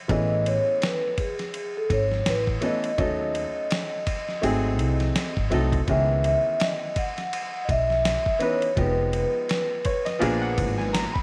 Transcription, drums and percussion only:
0.09 kick, ride
0.46 ride
0.82 snare, hi-hat pedal, ride
1.18 kick, ride
1.39 snare, ride
1.54 ride
1.90 kick, ride
2.12 snare
2.26 snare, hi-hat pedal, ride
2.47 kick
2.62 ride
2.84 ride
2.98 kick, ride
3.35 ride
3.71 snare, hi-hat pedal, ride
4.07 kick, ride
4.29 snare
4.43 ride
4.79 ride
5.00 snare, ride
5.16 snare, hi-hat pedal, ride
5.37 kick
5.52 ride
5.73 kick, ride
5.88 kick, ride
6.24 ride
6.60 snare, hi-hat pedal, ride
6.96 kick, ride
7.18 snare, ride
7.33 ride
7.69 kick, ride
7.90 snare
8.05 snare, hi-hat pedal, ride
8.26 kick
8.40 ride
8.62 ride
8.77 kick, ride
9.13 ride
9.49 snare, hi-hat pedal, ride
9.85 kick, ride
10.06 snare, ride
10.22 ride
10.58 kick, ride
10.79 snare
10.95 snare, hi-hat pedal, ride
11.16 kick

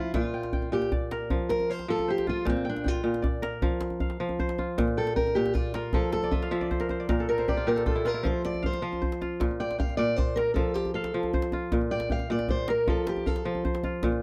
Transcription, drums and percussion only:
0.14 djembe slap, djembe bass
0.24 djembe tone
0.43 djembe slap
0.53 djembe bass
0.62 djembe tone
0.82 djembe slap
0.92 djembe slap, djembe tone, djembe bass
1.11 djembe slap
1.21 djembe slap
1.30 djembe tone, djembe bass
1.40 djembe slap
1.50 djembe slap
1.60 djembe tone
1.79 djembe slap
1.99 djembe tone
2.18 djembe slap
2.27 djembe tone
2.47 djembe slap, djembe bass
2.57 djembe tone
2.76 djembe slap
2.86 djembe bass
2.95 djembe tone
3.14 djembe slap
3.24 djembe tone, djembe bass
3.43 djembe slap
3.53 djembe slap
3.62 djembe tone, djembe bass
3.81 djembe slap
3.90 djembe tone
4.00 djembe bass
4.10 djembe slap
4.29 djembe tone
4.39 djembe bass
4.49 djembe slap
4.58 djembe tone
4.78 djembe slap, djembe bass
4.88 djembe tone
5.07 djembe slap
5.17 djembe bass
5.27 djembe tone
5.46 djembe slap
5.55 djembe slap, djembe tone, djembe bass
5.74 djembe slap
5.84 djembe slap
5.93 djembe tone, djembe bass
6.12 djembe slap
6.23 djembe slap, djembe tone
6.32 djembe bass
6.42 djembe slap
6.61 djembe tone
6.71 djembe slap, djembe bass
6.80 djembe slap
6.89 djembe tone
7.09 djembe slap, djembe bass
7.19 djembe tone
7.38 djembe slap
7.48 djembe bass
7.58 djembe slap, djembe tone
7.78 djembe slap
7.86 djembe tone, djembe bass
8.06 djembe slap
8.25 djembe tone, djembe bass
8.35 djembe slap
8.45 djembe slap
8.54 djembe tone
8.64 djembe bass
8.73 djembe slap
8.93 djembe tone
9.02 djembe bass
9.12 djembe slap
9.22 djembe tone
9.41 djembe slap, djembe bass
9.51 djembe tone
9.71 djembe slap
9.80 djembe bass
9.89 djembe tone
10.18 djembe slap, djembe tone, djembe bass
10.37 djembe slap
10.47 djembe slap
10.56 djembe tone, djembe bass
10.66 djembe slap
10.76 djembe slap
10.85 djembe tone
11.04 djembe slap
11.23 djembe tone
11.34 djembe bass
11.42 djembe slap
11.52 djembe tone
11.72 djembe slap, djembe bass
11.81 djembe tone
12.00 djembe slap
12.10 djembe bass
12.19 djembe tone
12.39 djembe slap
12.48 djembe slap, djembe bass
12.68 djembe slap
12.78 djembe slap
12.88 djembe tone, djembe bass
12.97 djembe slap
13.07 djembe slap
13.16 djembe tone
13.26 djembe bass
13.36 djembe slap
13.55 djembe tone
13.65 djembe bass
13.74 djembe slap
13.83 djembe tone
14.03 djembe slap, djembe bass
14.12 djembe tone

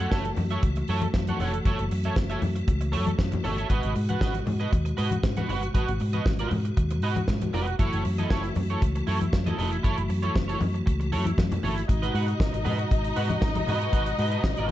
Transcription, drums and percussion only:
0.00 high conga
0.12 kick, snare
0.25 closed hi-hat, muted conga
0.36 open hi-hat, high conga, low conga
0.51 closed hi-hat
0.63 kick, closed hi-hat, muted conga
0.76 closed hi-hat, muted conga
0.88 open hi-hat
1.02 closed hi-hat, high conga
1.14 kick, snare, muted conga
1.27 closed hi-hat, high conga
1.40 open hi-hat, low conga
1.54 closed hi-hat
1.65 kick, closed hi-hat, muted conga
1.79 closed hi-hat
1.91 open hi-hat
2.04 closed hi-hat, high conga
2.16 kick, snare, muted conga
2.30 closed hi-hat
2.42 open hi-hat, high conga, low conga
2.56 closed hi-hat
2.68 kick, closed hi-hat, muted conga
2.81 closed hi-hat, muted conga
2.93 open hi-hat
3.07 closed hi-hat, high conga
3.19 kick, snare, muted conga
3.32 closed hi-hat, muted conga, high conga, low conga
3.45 open hi-hat, low conga
3.58 closed hi-hat
3.70 kick, closed hi-hat, muted conga
3.83 closed hi-hat
3.96 open hi-hat
4.09 closed hi-hat, high conga
4.21 kick, snare
4.35 closed hi-hat, muted conga
4.47 open hi-hat, high conga, low conga
4.61 closed hi-hat
4.73 kick, closed hi-hat
4.86 closed hi-hat
4.98 open hi-hat
5.11 closed hi-hat, high conga
5.23 kick, snare, muted conga
5.37 closed hi-hat, muted conga, high conga
5.49 open hi-hat, low conga
5.63 closed hi-hat
5.75 kick, closed hi-hat, muted conga
5.88 closed hi-hat, muted conga
6.00 open hi-hat
6.13 closed hi-hat, high conga
6.26 kick, snare
6.39 closed hi-hat, muted conga
6.51 open hi-hat, high conga, low conga
6.65 closed hi-hat
6.77 kick, closed hi-hat
6.90 closed hi-hat, muted conga
7.02 open hi-hat
7.16 closed hi-hat, high conga
7.28 kick, snare, muted conga
7.41 closed hi-hat, high conga
7.54 open hi-hat, low conga
7.67 closed hi-hat
7.79 kick, closed hi-hat, muted conga
7.93 closed hi-hat, muted conga
8.05 open hi-hat
8.18 closed hi-hat, high conga
8.30 kick, snare
8.44 closed hi-hat
8.55 open hi-hat, high conga, low conga
8.70 closed hi-hat
8.82 kick, closed hi-hat, muted conga
8.95 closed hi-hat, muted conga
9.07 open hi-hat
9.21 closed hi-hat, high conga
9.33 kick, snare
9.46 closed hi-hat, muted conga, high conga
9.59 open hi-hat, low conga
9.73 closed hi-hat
9.84 kick, closed hi-hat, muted conga
9.98 closed hi-hat
10.10 open hi-hat
10.23 closed hi-hat, high conga
10.35 kick, snare, muted conga
10.49 closed hi-hat
10.61 open hi-hat, high conga, low conga
10.76 closed hi-hat
10.87 kick, closed hi-hat
11.01 closed hi-hat, muted conga
11.12 open hi-hat
11.25 closed hi-hat, high conga
11.38 kick, snare
11.52 closed hi-hat, high conga, low conga
11.63 open hi-hat, low conga
11.78 closed hi-hat
11.89 kick, closed hi-hat, muted conga
12.03 closed hi-hat, muted conga
12.15 open hi-hat
12.28 closed hi-hat
12.40 kick, snare
12.54 closed hi-hat
12.66 open hi-hat, high conga, low conga
12.79 closed hi-hat
12.91 kick, closed hi-hat, muted conga
13.04 closed hi-hat
13.16 open hi-hat
13.30 closed hi-hat, high conga
13.42 kick, snare, muted conga
13.55 closed hi-hat, muted conga, high conga
13.67 open hi-hat, low conga
13.81 closed hi-hat
13.93 kick, closed hi-hat, muted conga
14.06 closed hi-hat
14.18 open hi-hat
14.31 closed hi-hat
14.44 kick, snare
14.57 closed hi-hat

